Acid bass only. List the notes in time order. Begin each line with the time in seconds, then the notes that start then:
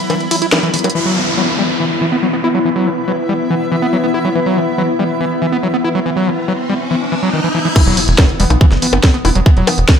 0.10 E3
0.31 E4
0.42 E4
0.52 E3
0.63 E3
0.74 E3
0.84 F#3
0.95 E3
1.06 F#3
1.16 E3
1.38 F#3
1.59 G3
1.80 E3
2.01 E3
2.12 B3
2.23 F#3
2.33 B3
2.44 E4
2.55 F#3
2.65 E3
2.76 F#3
2.86 E3
3.08 F#3
3.29 G3
3.50 E3
3.72 E3
3.82 B3
3.93 F#3
4.03 B3
4.14 E4
4.25 F#3
4.35 E3
4.46 F#3
4.57 E3
4.78 F#3
4.99 G3
5.21 E3
5.42 E3
5.52 B3
5.63 F#3
5.74 B3
5.84 E4
5.95 F#3
6.06 E3
6.16 F#3
6.27 E3
6.48 F#3
6.70 G3
6.91 E3
7.12 E3
7.23 F#3
7.33 D#3
7.44 E3
7.55 E3
7.65 E3
7.76 E3
7.86 F#3
7.97 E3
8.18 F#3
8.40 G3
8.61 E3
8.82 E3
8.93 B3
9.03 F#3
9.14 B3
9.25 E4
9.35 F#3
9.46 E3
9.57 F#3
9.67 E3
9.89 F#3